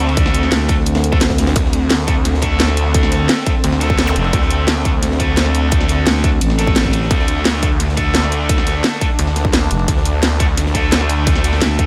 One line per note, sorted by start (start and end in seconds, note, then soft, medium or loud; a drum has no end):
0.00 0.50 D2 medium
0.00 11.86 D3 medium
0.00 0.67 A3 medium
0.00 11.86 A3 medium
0.00 1.53 C4 medium
0.00 0.67 D4 medium
0.00 0.67 A4 medium
0.00 snare soft
0.09 ride medium
0.17 kick loud
0.17 closed hi-hat loud
0.17 ride medium
0.26 snare soft
0.26 snare medium
0.34 closed hi-hat medium
0.34 ride medium
0.43 snare soft
0.52 1.37 D2 loud
0.52 snare loud
0.52 closed hi-hat loud
0.52 ride medium
0.68 0.74 A3 medium
0.68 0.74 D4 medium
0.68 0.74 A4 loud
0.68 kick loud
0.68 closed hi-hat medium
0.68 ride medium
0.86 closed hi-hat loud
0.86 ride medium
0.95 snare loud
0.95 snare soft
0.95 ride medium
1.04 closed hi-hat medium
1.12 1.17 A3 medium
1.12 1.17 D4 medium
1.12 1.17 A4 loud
1.12 kick loud
1.12 ride medium
1.21 snare loud
1.21 closed hi-hat loud
1.21 ride medium
1.30 kick medium
1.30 snare loud
1.30 ride medium
1.38 1.54 D2 loud
1.38 snare loud
1.38 closed hi-hat medium
1.38 ride medium
1.47 snare loud
1.47 ride medium
1.56 1.89 D2 loud
1.56 7.08 C4 loud
1.56 kick loud
1.56 closed hi-hat loud
1.56 ride medium
1.64 snare soft
1.73 closed hi-hat medium
1.73 ride medium
1.89 3.28 D2 medium
1.89 snare loud
1.89 closed hi-hat loud
1.89 ride medium
2.08 2.12 A3 medium
2.08 2.12 D4 medium
2.08 2.12 A4 loud
2.08 kick loud
2.08 closed hi-hat medium
2.08 ride medium
2.25 snare soft
2.25 closed hi-hat loud
2.25 ride medium
2.34 snare medium
2.42 3.44 A3 medium
2.42 3.44 D4 medium
2.42 3.44 A4 loud
2.42 kick medium
2.42 closed hi-hat medium
2.42 ride medium
2.60 snare loud
2.60 closed hi-hat medium
2.60 ride medium
2.68 snare soft
2.77 closed hi-hat medium
2.77 ride medium
2.94 kick loud
2.94 closed hi-hat loud
2.94 ride medium
3.03 snare medium
3.12 snare soft
3.12 closed hi-hat medium
3.12 ride medium
3.29 snare loud
3.29 closed hi-hat loud
3.29 ride loud
3.46 3.51 A3 medium
3.46 3.51 D4 medium
3.46 3.51 A4 loud
3.46 kick loud
3.46 closed hi-hat medium
3.46 ride medium
3.64 4.15 D2 loud
3.64 closed hi-hat medium
3.64 ride medium
3.72 snare soft
3.81 4.83 A3 medium
3.81 4.83 D4 medium
3.81 4.83 A4 medium
3.81 snare medium
3.81 closed hi-hat medium
3.81 ride medium
3.90 kick loud
3.90 ride soft
3.99 snare loud
3.99 closed hi-hat loud
3.99 ride medium
4.07 snare soft
4.07 zap medium
4.16 4.32 F1 loud
4.16 closed hi-hat medium
4.16 ride medium
4.24 ride soft
4.33 4.67 D2 loud
4.33 kick loud
4.33 closed hi-hat medium
4.33 ride medium
4.41 snare soft
4.51 closed hi-hat medium
4.51 ride medium
4.67 6.05 D2 loud
4.67 snare loud
4.67 closed hi-hat medium
4.67 ride medium
4.85 4.90 A3 medium
4.85 4.90 D4 medium
4.85 4.90 A4 loud
4.85 kick loud
4.85 closed hi-hat medium
4.85 ride medium
5.03 snare soft
5.03 closed hi-hat medium
5.03 ride medium
5.11 snare medium
5.20 6.22 A3 medium
5.20 6.22 D4 medium
5.20 6.22 A4 medium
5.20 kick medium
5.20 closed hi-hat medium
5.20 ride medium
5.37 snare loud
5.37 closed hi-hat loud
5.37 ride medium
5.46 snare medium
5.55 closed hi-hat medium
5.55 ride medium
5.71 kick loud
5.71 closed hi-hat medium
5.71 ride medium
5.81 snare soft
5.88 snare soft
5.88 closed hi-hat medium
5.88 ride medium
6.06 6.40 D2 medium
6.06 snare loud
6.06 closed hi-hat medium
6.06 ride medium
6.24 6.29 A3 medium
6.24 6.29 D4 medium
6.24 6.29 A4 loud
6.24 kick loud
6.24 closed hi-hat medium
6.24 ride medium
6.41 7.09 A1 medium
6.41 closed hi-hat medium
6.41 ride medium
6.50 snare soft
6.58 7.61 A3 medium
6.58 7.61 D4 medium
6.58 7.61 A4 medium
6.58 snare soft
6.58 closed hi-hat medium
6.58 ride medium
6.67 kick loud
6.67 ride soft
6.76 snare loud
6.76 closed hi-hat medium
6.76 ride medium
6.84 kick medium
6.84 snare soft
6.93 closed hi-hat medium
6.93 ride medium
7.02 snare soft
7.11 7.44 D2 loud
7.11 11.86 D4 loud
7.11 kick loud
7.11 closed hi-hat medium
7.11 ride medium
7.19 snare soft
7.28 closed hi-hat medium
7.28 ride medium
7.45 8.83 D2 medium
7.45 snare loud
7.45 closed hi-hat medium
7.45 ride medium
7.62 7.67 A3 medium
7.62 7.67 D4 medium
7.62 7.67 A4 loud
7.62 kick loud
7.62 closed hi-hat medium
7.62 ride medium
7.80 snare soft
7.80 closed hi-hat medium
7.80 ride medium
7.89 snare soft
7.97 8.99 A3 medium
7.97 8.99 D4 medium
7.97 8.99 A4 medium
7.97 kick medium
7.97 closed hi-hat medium
7.97 ride medium
8.14 snare loud
8.14 closed hi-hat medium
8.14 ride medium
8.23 snare soft
8.32 closed hi-hat medium
8.32 ride medium
8.49 kick loud
8.49 closed hi-hat medium
8.49 ride medium
8.58 snare soft
8.67 snare soft
8.67 closed hi-hat medium
8.67 ride medium
8.84 snare loud
8.84 closed hi-hat medium
8.84 ride medium
9.01 9.06 A3 medium
9.01 9.06 D4 medium
9.01 9.06 A4 loud
9.01 kick loud
9.01 closed hi-hat medium
9.01 ride medium
9.19 9.69 D2 loud
9.19 closed hi-hat medium
9.19 ride medium
9.27 snare soft
9.36 snare medium
9.36 closed hi-hat medium
9.36 ride medium
9.45 kick loud
9.45 ride soft
9.53 snare loud
9.53 closed hi-hat medium
9.53 ride medium
9.63 snare soft
9.70 9.87 F1 loud
9.70 closed hi-hat medium
9.70 ride medium
9.79 ride soft
9.88 10.21 D2 medium
9.88 kick loud
9.88 closed hi-hat medium
9.88 ride medium
9.97 snare soft
10.05 closed hi-hat medium
10.05 ride medium
10.22 11.60 D2 loud
10.22 snare loud
10.22 closed hi-hat loud
10.22 ride loud
10.40 10.45 A3 medium
10.40 10.45 D4 medium
10.40 10.45 A4 loud
10.40 kick loud
10.40 closed hi-hat medium
10.40 ride medium
10.57 snare soft
10.57 closed hi-hat loud
10.57 ride medium
10.66 snare medium
10.75 11.77 A3 medium
10.75 11.77 D4 medium
10.75 11.77 A4 medium
10.75 kick medium
10.75 closed hi-hat medium
10.75 ride medium
10.92 snare loud
10.92 closed hi-hat loud
10.92 ride medium
11.01 snare soft
11.09 closed hi-hat medium
11.09 ride medium
11.27 kick loud
11.27 closed hi-hat loud
11.27 ride medium
11.36 snare soft
11.44 closed hi-hat medium
11.44 ride medium
11.53 snare soft
11.62 11.86 D2 medium
11.62 snare loud
11.62 closed hi-hat loud
11.62 ride medium
11.79 11.84 A3 medium
11.79 11.84 D4 medium
11.79 11.84 A4 loud
11.79 kick loud
11.79 closed hi-hat medium